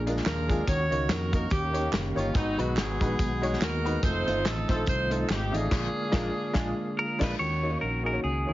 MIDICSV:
0, 0, Header, 1, 7, 480
1, 0, Start_track
1, 0, Key_signature, -6, "minor"
1, 0, Tempo, 419580
1, 773, Time_signature, 4, 2, 24, 8
1, 9759, End_track
2, 0, Start_track
2, 0, Title_t, "Clean electric guitar"
2, 0, Program_c, 0, 27
2, 7994, Note_on_c, 0, 70, 101
2, 8266, Note_off_c, 0, 70, 0
2, 8275, Note_on_c, 0, 71, 95
2, 8452, Note_off_c, 0, 71, 0
2, 8457, Note_on_c, 0, 73, 90
2, 8932, Note_off_c, 0, 73, 0
2, 8936, Note_on_c, 0, 70, 80
2, 9210, Note_off_c, 0, 70, 0
2, 9223, Note_on_c, 0, 70, 89
2, 9418, Note_off_c, 0, 70, 0
2, 9423, Note_on_c, 0, 68, 79
2, 9759, Note_off_c, 0, 68, 0
2, 9759, End_track
3, 0, Start_track
3, 0, Title_t, "Saxophone section"
3, 0, Program_c, 1, 65
3, 283, Note_on_c, 1, 70, 92
3, 289, Note_on_c, 1, 62, 66
3, 290, Note_on_c, 1, 65, 64
3, 734, Note_off_c, 1, 70, 0
3, 737, Note_off_c, 1, 62, 0
3, 738, Note_off_c, 1, 65, 0
3, 776, Note_on_c, 1, 66, 76
3, 781, Note_on_c, 1, 70, 75
3, 782, Note_on_c, 1, 73, 107
3, 1248, Note_off_c, 1, 70, 0
3, 1257, Note_off_c, 1, 73, 0
3, 1262, Note_on_c, 1, 70, 85
3, 1517, Note_off_c, 1, 70, 0
3, 1531, Note_on_c, 1, 70, 81
3, 1689, Note_off_c, 1, 66, 0
3, 1721, Note_off_c, 1, 70, 0
3, 1727, Note_on_c, 1, 67, 85
3, 1733, Note_on_c, 1, 61, 72
3, 1735, Note_on_c, 1, 58, 64
3, 2176, Note_off_c, 1, 67, 0
3, 2488, Note_on_c, 1, 65, 82
3, 2647, Note_off_c, 1, 61, 0
3, 2648, Note_off_c, 1, 58, 0
3, 2679, Note_off_c, 1, 65, 0
3, 2695, Note_on_c, 1, 59, 71
3, 2695, Note_on_c, 1, 63, 94
3, 2697, Note_on_c, 1, 54, 71
3, 2968, Note_off_c, 1, 63, 0
3, 2975, Note_on_c, 1, 66, 84
3, 3161, Note_off_c, 1, 59, 0
3, 3175, Note_on_c, 1, 59, 69
3, 3178, Note_off_c, 1, 66, 0
3, 3179, Note_on_c, 1, 63, 67
3, 3179, Note_on_c, 1, 68, 91
3, 3610, Note_off_c, 1, 54, 0
3, 4089, Note_off_c, 1, 59, 0
3, 4091, Note_off_c, 1, 63, 0
3, 4091, Note_off_c, 1, 68, 0
3, 4132, Note_on_c, 1, 66, 64
3, 4134, Note_on_c, 1, 63, 61
3, 4143, Note_on_c, 1, 70, 95
3, 4579, Note_off_c, 1, 66, 0
3, 4580, Note_off_c, 1, 63, 0
3, 4609, Note_on_c, 1, 63, 75
3, 4611, Note_on_c, 1, 69, 76
3, 4614, Note_on_c, 1, 72, 105
3, 4619, Note_off_c, 1, 70, 0
3, 5087, Note_off_c, 1, 69, 0
3, 5094, Note_off_c, 1, 72, 0
3, 5101, Note_on_c, 1, 69, 90
3, 5371, Note_off_c, 1, 69, 0
3, 5383, Note_on_c, 1, 69, 85
3, 5526, Note_off_c, 1, 63, 0
3, 5568, Note_off_c, 1, 69, 0
3, 5578, Note_on_c, 1, 63, 68
3, 5579, Note_on_c, 1, 69, 69
3, 5585, Note_on_c, 1, 72, 94
3, 5836, Note_off_c, 1, 69, 0
3, 5850, Note_on_c, 1, 69, 84
3, 5853, Note_off_c, 1, 72, 0
3, 6055, Note_off_c, 1, 69, 0
3, 6079, Note_on_c, 1, 67, 87
3, 6336, Note_on_c, 1, 65, 62
3, 6337, Note_on_c, 1, 62, 65
3, 6340, Note_off_c, 1, 67, 0
3, 6346, Note_on_c, 1, 68, 90
3, 6490, Note_off_c, 1, 63, 0
3, 8206, Note_off_c, 1, 65, 0
3, 8207, Note_off_c, 1, 62, 0
3, 8257, Note_off_c, 1, 68, 0
3, 9759, End_track
4, 0, Start_track
4, 0, Title_t, "Grand piano"
4, 0, Program_c, 2, 0
4, 0, Note_on_c, 2, 46, 65
4, 73, Note_on_c, 2, 56, 78
4, 77, Note_on_c, 2, 62, 71
4, 86, Note_on_c, 2, 65, 70
4, 86, Note_on_c, 2, 70, 85
4, 218, Note_off_c, 2, 56, 0
4, 220, Note_off_c, 2, 62, 0
4, 224, Note_off_c, 2, 65, 0
4, 225, Note_off_c, 2, 70, 0
4, 519, Note_off_c, 2, 46, 0
4, 550, Note_on_c, 2, 56, 75
4, 555, Note_on_c, 2, 62, 64
4, 564, Note_on_c, 2, 65, 73
4, 568, Note_on_c, 2, 68, 78
4, 696, Note_off_c, 2, 56, 0
4, 699, Note_off_c, 2, 62, 0
4, 703, Note_off_c, 2, 65, 0
4, 705, Note_off_c, 2, 68, 0
4, 766, Note_on_c, 2, 51, 64
4, 1027, Note_on_c, 2, 58, 72
4, 1037, Note_on_c, 2, 63, 65
4, 1037, Note_on_c, 2, 66, 64
4, 1045, Note_on_c, 2, 73, 74
4, 1175, Note_off_c, 2, 58, 0
4, 1180, Note_off_c, 2, 63, 0
4, 1180, Note_off_c, 2, 66, 0
4, 1184, Note_off_c, 2, 73, 0
4, 1477, Note_off_c, 2, 51, 0
4, 1503, Note_on_c, 2, 58, 69
4, 1515, Note_on_c, 2, 63, 66
4, 1515, Note_on_c, 2, 66, 62
4, 1517, Note_on_c, 2, 70, 80
4, 1653, Note_off_c, 2, 58, 0
4, 1659, Note_off_c, 2, 63, 0
4, 1659, Note_off_c, 2, 66, 0
4, 1660, Note_off_c, 2, 70, 0
4, 1721, Note_on_c, 2, 51, 58
4, 1978, Note_on_c, 2, 58, 63
4, 1980, Note_on_c, 2, 63, 60
4, 1983, Note_on_c, 2, 67, 61
4, 1987, Note_on_c, 2, 73, 67
4, 2130, Note_off_c, 2, 58, 0
4, 2131, Note_off_c, 2, 63, 0
4, 2133, Note_off_c, 2, 67, 0
4, 2134, Note_off_c, 2, 73, 0
4, 2435, Note_off_c, 2, 51, 0
4, 2457, Note_on_c, 2, 58, 74
4, 2462, Note_on_c, 2, 63, 68
4, 2468, Note_on_c, 2, 67, 68
4, 2471, Note_on_c, 2, 73, 88
4, 2610, Note_off_c, 2, 58, 0
4, 2612, Note_off_c, 2, 63, 0
4, 2615, Note_off_c, 2, 67, 0
4, 2617, Note_off_c, 2, 73, 0
4, 2671, Note_on_c, 2, 44, 66
4, 2940, Note_on_c, 2, 56, 67
4, 2950, Note_on_c, 2, 63, 69
4, 2952, Note_on_c, 2, 66, 67
4, 2957, Note_on_c, 2, 71, 80
4, 3091, Note_off_c, 2, 56, 0
4, 3096, Note_off_c, 2, 63, 0
4, 3097, Note_off_c, 2, 66, 0
4, 3100, Note_off_c, 2, 71, 0
4, 3390, Note_off_c, 2, 44, 0
4, 3435, Note_on_c, 2, 56, 72
4, 3440, Note_on_c, 2, 63, 67
4, 3447, Note_on_c, 2, 66, 67
4, 3447, Note_on_c, 2, 71, 79
4, 3579, Note_off_c, 2, 56, 0
4, 3582, Note_off_c, 2, 63, 0
4, 3585, Note_off_c, 2, 66, 0
4, 3585, Note_off_c, 2, 71, 0
4, 3907, Note_on_c, 2, 56, 78
4, 3908, Note_on_c, 2, 63, 71
4, 3918, Note_on_c, 2, 66, 71
4, 3921, Note_on_c, 2, 73, 89
4, 4055, Note_off_c, 2, 56, 0
4, 4056, Note_off_c, 2, 63, 0
4, 4060, Note_off_c, 2, 66, 0
4, 4062, Note_off_c, 2, 73, 0
4, 4400, Note_on_c, 2, 56, 77
4, 4400, Note_on_c, 2, 63, 71
4, 4406, Note_on_c, 2, 66, 76
4, 4410, Note_on_c, 2, 71, 88
4, 4542, Note_off_c, 2, 56, 0
4, 4542, Note_off_c, 2, 63, 0
4, 4545, Note_off_c, 2, 66, 0
4, 4547, Note_off_c, 2, 71, 0
4, 4878, Note_on_c, 2, 57, 72
4, 4882, Note_on_c, 2, 63, 72
4, 4884, Note_on_c, 2, 65, 71
4, 4891, Note_on_c, 2, 72, 81
4, 5021, Note_off_c, 2, 57, 0
4, 5023, Note_off_c, 2, 63, 0
4, 5023, Note_off_c, 2, 65, 0
4, 5027, Note_off_c, 2, 72, 0
4, 5358, Note_on_c, 2, 57, 69
4, 5362, Note_on_c, 2, 63, 64
4, 5365, Note_on_c, 2, 65, 62
4, 5369, Note_on_c, 2, 72, 80
4, 5500, Note_off_c, 2, 57, 0
4, 5502, Note_off_c, 2, 63, 0
4, 5504, Note_off_c, 2, 65, 0
4, 5506, Note_off_c, 2, 72, 0
4, 5834, Note_on_c, 2, 63, 66
4, 5835, Note_on_c, 2, 57, 69
4, 5843, Note_on_c, 2, 65, 62
4, 5850, Note_on_c, 2, 72, 70
4, 5978, Note_off_c, 2, 63, 0
4, 5979, Note_off_c, 2, 57, 0
4, 5983, Note_off_c, 2, 65, 0
4, 5986, Note_off_c, 2, 72, 0
4, 6314, Note_on_c, 2, 57, 79
4, 6318, Note_on_c, 2, 63, 68
4, 6320, Note_on_c, 2, 75, 87
4, 6322, Note_on_c, 2, 65, 72
4, 6458, Note_off_c, 2, 57, 0
4, 6460, Note_off_c, 2, 63, 0
4, 6462, Note_off_c, 2, 65, 0
4, 6462, Note_off_c, 2, 75, 0
4, 6996, Note_on_c, 2, 56, 95
4, 7000, Note_on_c, 2, 62, 97
4, 7004, Note_on_c, 2, 65, 105
4, 7006, Note_on_c, 2, 70, 102
4, 7189, Note_off_c, 2, 56, 0
4, 7192, Note_off_c, 2, 62, 0
4, 7194, Note_off_c, 2, 65, 0
4, 7196, Note_off_c, 2, 70, 0
4, 7476, Note_on_c, 2, 56, 97
4, 7476, Note_on_c, 2, 62, 92
4, 7480, Note_on_c, 2, 65, 94
4, 7484, Note_on_c, 2, 68, 93
4, 7670, Note_off_c, 2, 56, 0
4, 7670, Note_off_c, 2, 62, 0
4, 7672, Note_off_c, 2, 65, 0
4, 7674, Note_off_c, 2, 68, 0
4, 8221, Note_on_c, 2, 56, 105
4, 8227, Note_on_c, 2, 62, 106
4, 8234, Note_on_c, 2, 65, 95
4, 8237, Note_on_c, 2, 70, 96
4, 8373, Note_off_c, 2, 56, 0
4, 8376, Note_off_c, 2, 62, 0
4, 8381, Note_off_c, 2, 65, 0
4, 8382, Note_off_c, 2, 70, 0
4, 8451, Note_on_c, 2, 51, 55
4, 8719, Note_on_c, 2, 58, 62
4, 8722, Note_on_c, 2, 63, 55
4, 8727, Note_on_c, 2, 66, 54
4, 8732, Note_on_c, 2, 73, 68
4, 8770, Note_off_c, 2, 58, 0
4, 8772, Note_off_c, 2, 63, 0
4, 8774, Note_off_c, 2, 66, 0
4, 8777, Note_off_c, 2, 73, 0
4, 8807, Note_on_c, 2, 58, 53
4, 8826, Note_on_c, 2, 73, 65
4, 8969, Note_off_c, 2, 58, 0
4, 8978, Note_off_c, 2, 73, 0
4, 9161, Note_off_c, 2, 51, 0
4, 9184, Note_on_c, 2, 58, 64
4, 9186, Note_on_c, 2, 63, 57
4, 9190, Note_on_c, 2, 66, 56
4, 9195, Note_on_c, 2, 68, 64
4, 9243, Note_off_c, 2, 58, 0
4, 9244, Note_off_c, 2, 63, 0
4, 9246, Note_off_c, 2, 66, 0
4, 9249, Note_off_c, 2, 68, 0
4, 9290, Note_on_c, 2, 63, 49
4, 9294, Note_on_c, 2, 58, 55
4, 9301, Note_on_c, 2, 66, 49
4, 9301, Note_on_c, 2, 73, 62
4, 9451, Note_off_c, 2, 63, 0
4, 9453, Note_off_c, 2, 58, 0
4, 9456, Note_off_c, 2, 66, 0
4, 9456, Note_off_c, 2, 73, 0
4, 9674, Note_on_c, 2, 58, 57
4, 9677, Note_on_c, 2, 63, 55
4, 9684, Note_on_c, 2, 66, 49
4, 9686, Note_on_c, 2, 73, 59
4, 9759, Note_off_c, 2, 58, 0
4, 9759, Note_off_c, 2, 63, 0
4, 9759, Note_off_c, 2, 66, 0
4, 9759, Note_off_c, 2, 73, 0
4, 9759, End_track
5, 0, Start_track
5, 0, Title_t, "Tonewheel organ"
5, 0, Program_c, 3, 16
5, 0, Note_on_c, 3, 53, 73
5, 0, Note_on_c, 3, 58, 68
5, 0, Note_on_c, 3, 62, 72
5, 0, Note_on_c, 3, 68, 84
5, 744, Note_off_c, 3, 58, 0
5, 755, Note_off_c, 3, 53, 0
5, 756, Note_off_c, 3, 68, 0
5, 757, Note_off_c, 3, 62, 0
5, 758, Note_on_c, 3, 58, 62
5, 762, Note_on_c, 3, 66, 78
5, 765, Note_on_c, 3, 61, 58
5, 769, Note_on_c, 3, 51, 65
5, 1706, Note_off_c, 3, 58, 0
5, 1708, Note_off_c, 3, 66, 0
5, 1710, Note_off_c, 3, 61, 0
5, 1712, Note_off_c, 3, 51, 0
5, 1726, Note_on_c, 3, 51, 66
5, 1726, Note_on_c, 3, 61, 53
5, 1731, Note_on_c, 3, 58, 59
5, 1733, Note_on_c, 3, 67, 70
5, 2666, Note_off_c, 3, 51, 0
5, 2670, Note_off_c, 3, 61, 0
5, 2673, Note_off_c, 3, 58, 0
5, 2674, Note_off_c, 3, 67, 0
5, 2680, Note_on_c, 3, 51, 68
5, 2680, Note_on_c, 3, 65, 56
5, 2683, Note_on_c, 3, 56, 61
5, 2691, Note_on_c, 3, 59, 62
5, 2746, Note_on_c, 3, 66, 79
5, 2752, Note_off_c, 3, 65, 0
5, 4568, Note_off_c, 3, 51, 0
5, 4570, Note_off_c, 3, 56, 0
5, 4574, Note_off_c, 3, 59, 0
5, 4602, Note_off_c, 3, 66, 0
5, 4605, Note_on_c, 3, 51, 70
5, 4609, Note_on_c, 3, 65, 73
5, 4611, Note_on_c, 3, 57, 64
5, 4615, Note_on_c, 3, 60, 65
5, 6491, Note_off_c, 3, 51, 0
5, 6493, Note_off_c, 3, 65, 0
5, 6494, Note_off_c, 3, 57, 0
5, 6496, Note_off_c, 3, 60, 0
5, 6532, Note_on_c, 3, 65, 75
5, 6537, Note_on_c, 3, 50, 67
5, 6538, Note_on_c, 3, 56, 60
5, 6540, Note_on_c, 3, 58, 61
5, 8416, Note_off_c, 3, 65, 0
5, 8418, Note_off_c, 3, 50, 0
5, 8418, Note_off_c, 3, 56, 0
5, 8420, Note_off_c, 3, 58, 0
5, 8465, Note_on_c, 3, 51, 52
5, 8468, Note_on_c, 3, 66, 64
5, 8470, Note_on_c, 3, 58, 53
5, 8473, Note_on_c, 3, 61, 51
5, 9759, Note_off_c, 3, 51, 0
5, 9759, Note_off_c, 3, 58, 0
5, 9759, Note_off_c, 3, 61, 0
5, 9759, Note_off_c, 3, 66, 0
5, 9759, End_track
6, 0, Start_track
6, 0, Title_t, "Fingered electric bass"
6, 0, Program_c, 4, 33
6, 0, Note_on_c, 4, 34, 84
6, 221, Note_off_c, 4, 34, 0
6, 294, Note_on_c, 4, 39, 82
6, 702, Note_off_c, 4, 39, 0
6, 773, Note_on_c, 4, 39, 95
6, 1006, Note_off_c, 4, 39, 0
6, 1042, Note_on_c, 4, 37, 85
6, 1220, Note_off_c, 4, 37, 0
6, 1244, Note_on_c, 4, 41, 83
6, 1656, Note_off_c, 4, 41, 0
6, 1733, Note_on_c, 4, 39, 100
6, 2141, Note_off_c, 4, 39, 0
6, 2200, Note_on_c, 4, 30, 84
6, 2438, Note_off_c, 4, 30, 0
6, 2474, Note_on_c, 4, 31, 77
6, 2655, Note_off_c, 4, 31, 0
6, 2686, Note_on_c, 4, 32, 97
6, 2922, Note_off_c, 4, 32, 0
6, 2958, Note_on_c, 4, 35, 96
6, 3137, Note_off_c, 4, 35, 0
6, 3162, Note_on_c, 4, 32, 89
6, 3400, Note_off_c, 4, 32, 0
6, 3446, Note_on_c, 4, 34, 90
6, 3622, Note_off_c, 4, 34, 0
6, 3654, Note_on_c, 4, 35, 79
6, 4062, Note_off_c, 4, 35, 0
6, 4125, Note_on_c, 4, 39, 73
6, 4537, Note_off_c, 4, 39, 0
6, 4613, Note_on_c, 4, 29, 109
6, 4846, Note_off_c, 4, 29, 0
6, 4888, Note_on_c, 4, 31, 95
6, 5063, Note_off_c, 4, 31, 0
6, 5102, Note_on_c, 4, 33, 83
6, 5331, Note_off_c, 4, 33, 0
6, 5367, Note_on_c, 4, 34, 88
6, 5542, Note_off_c, 4, 34, 0
6, 5582, Note_on_c, 4, 36, 92
6, 5986, Note_off_c, 4, 36, 0
6, 6058, Note_on_c, 4, 32, 91
6, 6289, Note_off_c, 4, 32, 0
6, 6327, Note_on_c, 4, 33, 84
6, 6502, Note_off_c, 4, 33, 0
6, 6538, Note_on_c, 4, 34, 107
6, 6722, Note_off_c, 4, 34, 0
6, 7016, Note_on_c, 4, 34, 101
6, 7201, Note_off_c, 4, 34, 0
6, 7490, Note_on_c, 4, 34, 91
6, 7678, Note_off_c, 4, 34, 0
6, 8250, Note_on_c, 4, 34, 99
6, 8390, Note_off_c, 4, 34, 0
6, 8464, Note_on_c, 4, 39, 77
6, 8868, Note_off_c, 4, 39, 0
6, 8950, Note_on_c, 4, 34, 67
6, 9352, Note_off_c, 4, 34, 0
6, 9425, Note_on_c, 4, 37, 79
6, 9654, Note_off_c, 4, 37, 0
6, 9711, Note_on_c, 4, 39, 67
6, 9759, Note_off_c, 4, 39, 0
6, 9759, End_track
7, 0, Start_track
7, 0, Title_t, "Drums"
7, 81, Note_on_c, 9, 42, 70
7, 91, Note_on_c, 9, 54, 53
7, 193, Note_on_c, 9, 38, 34
7, 195, Note_off_c, 9, 42, 0
7, 206, Note_off_c, 9, 54, 0
7, 293, Note_on_c, 9, 39, 93
7, 293, Note_on_c, 9, 54, 99
7, 299, Note_off_c, 9, 38, 0
7, 299, Note_on_c, 9, 38, 110
7, 301, Note_on_c, 9, 42, 74
7, 407, Note_off_c, 9, 39, 0
7, 407, Note_off_c, 9, 54, 0
7, 413, Note_off_c, 9, 38, 0
7, 415, Note_off_c, 9, 42, 0
7, 566, Note_on_c, 9, 36, 95
7, 576, Note_on_c, 9, 42, 64
7, 582, Note_on_c, 9, 54, 54
7, 681, Note_off_c, 9, 36, 0
7, 690, Note_off_c, 9, 42, 0
7, 697, Note_off_c, 9, 54, 0
7, 772, Note_on_c, 9, 36, 109
7, 773, Note_on_c, 9, 42, 100
7, 774, Note_on_c, 9, 54, 86
7, 886, Note_off_c, 9, 36, 0
7, 888, Note_off_c, 9, 42, 0
7, 889, Note_off_c, 9, 54, 0
7, 1054, Note_on_c, 9, 42, 80
7, 1055, Note_on_c, 9, 54, 52
7, 1169, Note_off_c, 9, 42, 0
7, 1169, Note_off_c, 9, 54, 0
7, 1249, Note_on_c, 9, 38, 107
7, 1255, Note_on_c, 9, 39, 96
7, 1255, Note_on_c, 9, 54, 102
7, 1257, Note_on_c, 9, 42, 91
7, 1363, Note_off_c, 9, 38, 0
7, 1370, Note_off_c, 9, 39, 0
7, 1370, Note_off_c, 9, 54, 0
7, 1371, Note_off_c, 9, 42, 0
7, 1522, Note_on_c, 9, 36, 93
7, 1527, Note_on_c, 9, 54, 58
7, 1529, Note_on_c, 9, 42, 70
7, 1637, Note_off_c, 9, 36, 0
7, 1641, Note_off_c, 9, 54, 0
7, 1643, Note_off_c, 9, 42, 0
7, 1720, Note_on_c, 9, 54, 78
7, 1731, Note_on_c, 9, 36, 122
7, 1734, Note_on_c, 9, 42, 89
7, 1834, Note_off_c, 9, 54, 0
7, 1845, Note_off_c, 9, 36, 0
7, 1848, Note_off_c, 9, 42, 0
7, 1997, Note_on_c, 9, 42, 74
7, 2004, Note_on_c, 9, 54, 52
7, 2111, Note_off_c, 9, 42, 0
7, 2118, Note_off_c, 9, 54, 0
7, 2205, Note_on_c, 9, 39, 97
7, 2205, Note_on_c, 9, 54, 95
7, 2216, Note_on_c, 9, 38, 114
7, 2218, Note_on_c, 9, 42, 78
7, 2319, Note_off_c, 9, 39, 0
7, 2319, Note_off_c, 9, 54, 0
7, 2330, Note_off_c, 9, 38, 0
7, 2332, Note_off_c, 9, 42, 0
7, 2488, Note_on_c, 9, 54, 51
7, 2499, Note_on_c, 9, 42, 68
7, 2602, Note_off_c, 9, 54, 0
7, 2613, Note_off_c, 9, 42, 0
7, 2680, Note_on_c, 9, 54, 78
7, 2688, Note_on_c, 9, 36, 113
7, 2688, Note_on_c, 9, 42, 102
7, 2795, Note_off_c, 9, 54, 0
7, 2802, Note_off_c, 9, 36, 0
7, 2802, Note_off_c, 9, 42, 0
7, 2961, Note_on_c, 9, 54, 49
7, 2970, Note_on_c, 9, 42, 79
7, 3075, Note_off_c, 9, 54, 0
7, 3085, Note_off_c, 9, 42, 0
7, 3166, Note_on_c, 9, 39, 89
7, 3166, Note_on_c, 9, 54, 98
7, 3177, Note_on_c, 9, 38, 105
7, 3186, Note_on_c, 9, 42, 87
7, 3280, Note_off_c, 9, 39, 0
7, 3280, Note_off_c, 9, 54, 0
7, 3292, Note_off_c, 9, 38, 0
7, 3300, Note_off_c, 9, 42, 0
7, 3443, Note_on_c, 9, 36, 96
7, 3448, Note_on_c, 9, 54, 55
7, 3457, Note_on_c, 9, 42, 77
7, 3557, Note_off_c, 9, 36, 0
7, 3562, Note_off_c, 9, 54, 0
7, 3571, Note_off_c, 9, 42, 0
7, 3650, Note_on_c, 9, 54, 74
7, 3651, Note_on_c, 9, 36, 112
7, 3657, Note_on_c, 9, 42, 97
7, 3764, Note_off_c, 9, 54, 0
7, 3766, Note_off_c, 9, 36, 0
7, 3771, Note_off_c, 9, 42, 0
7, 3927, Note_on_c, 9, 54, 58
7, 3929, Note_on_c, 9, 42, 73
7, 4041, Note_off_c, 9, 54, 0
7, 4041, Note_on_c, 9, 38, 34
7, 4043, Note_off_c, 9, 42, 0
7, 4135, Note_on_c, 9, 39, 96
7, 4135, Note_on_c, 9, 54, 97
7, 4142, Note_off_c, 9, 38, 0
7, 4142, Note_on_c, 9, 38, 113
7, 4144, Note_on_c, 9, 42, 74
7, 4249, Note_off_c, 9, 39, 0
7, 4249, Note_off_c, 9, 54, 0
7, 4256, Note_off_c, 9, 38, 0
7, 4258, Note_off_c, 9, 42, 0
7, 4416, Note_on_c, 9, 54, 50
7, 4423, Note_on_c, 9, 42, 67
7, 4531, Note_off_c, 9, 54, 0
7, 4537, Note_off_c, 9, 42, 0
7, 4610, Note_on_c, 9, 36, 111
7, 4611, Note_on_c, 9, 42, 102
7, 4617, Note_on_c, 9, 54, 83
7, 4725, Note_off_c, 9, 36, 0
7, 4726, Note_off_c, 9, 42, 0
7, 4731, Note_off_c, 9, 54, 0
7, 4892, Note_on_c, 9, 42, 80
7, 4894, Note_on_c, 9, 54, 49
7, 5007, Note_off_c, 9, 42, 0
7, 5009, Note_off_c, 9, 54, 0
7, 5096, Note_on_c, 9, 38, 103
7, 5099, Note_on_c, 9, 39, 91
7, 5099, Note_on_c, 9, 54, 97
7, 5104, Note_on_c, 9, 42, 93
7, 5210, Note_off_c, 9, 38, 0
7, 5214, Note_off_c, 9, 39, 0
7, 5214, Note_off_c, 9, 54, 0
7, 5219, Note_off_c, 9, 42, 0
7, 5365, Note_on_c, 9, 36, 90
7, 5368, Note_on_c, 9, 54, 57
7, 5374, Note_on_c, 9, 42, 76
7, 5480, Note_off_c, 9, 36, 0
7, 5483, Note_off_c, 9, 54, 0
7, 5488, Note_off_c, 9, 42, 0
7, 5563, Note_on_c, 9, 54, 82
7, 5576, Note_on_c, 9, 36, 117
7, 5587, Note_on_c, 9, 42, 96
7, 5677, Note_off_c, 9, 54, 0
7, 5691, Note_off_c, 9, 36, 0
7, 5702, Note_off_c, 9, 42, 0
7, 5847, Note_on_c, 9, 54, 56
7, 5851, Note_on_c, 9, 42, 72
7, 5961, Note_off_c, 9, 54, 0
7, 5965, Note_off_c, 9, 42, 0
7, 6055, Note_on_c, 9, 39, 97
7, 6055, Note_on_c, 9, 54, 99
7, 6070, Note_on_c, 9, 38, 114
7, 6072, Note_on_c, 9, 42, 77
7, 6169, Note_off_c, 9, 39, 0
7, 6169, Note_off_c, 9, 54, 0
7, 6184, Note_off_c, 9, 38, 0
7, 6186, Note_off_c, 9, 42, 0
7, 6338, Note_on_c, 9, 54, 50
7, 6345, Note_on_c, 9, 42, 67
7, 6452, Note_off_c, 9, 54, 0
7, 6459, Note_off_c, 9, 42, 0
7, 6536, Note_on_c, 9, 36, 108
7, 6539, Note_on_c, 9, 38, 102
7, 6539, Note_on_c, 9, 49, 83
7, 6650, Note_off_c, 9, 36, 0
7, 6653, Note_off_c, 9, 38, 0
7, 6653, Note_off_c, 9, 49, 0
7, 7008, Note_on_c, 9, 38, 109
7, 7014, Note_on_c, 9, 36, 99
7, 7122, Note_off_c, 9, 38, 0
7, 7128, Note_off_c, 9, 36, 0
7, 7486, Note_on_c, 9, 38, 107
7, 7493, Note_on_c, 9, 36, 107
7, 7601, Note_off_c, 9, 38, 0
7, 7608, Note_off_c, 9, 36, 0
7, 8248, Note_on_c, 9, 36, 103
7, 8249, Note_on_c, 9, 38, 100
7, 8249, Note_on_c, 9, 49, 79
7, 8362, Note_off_c, 9, 36, 0
7, 8363, Note_off_c, 9, 38, 0
7, 8363, Note_off_c, 9, 49, 0
7, 9759, End_track
0, 0, End_of_file